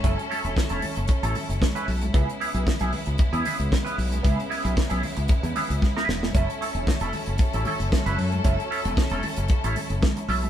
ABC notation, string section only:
X:1
M:4/4
L:1/8
Q:1/4=114
K:F#m
V:1 name="String section"
[F,CEA]8 | [C,G,B,]8- | [C,G,B,]8 | [F,CA]8- |
[F,CA]8 |]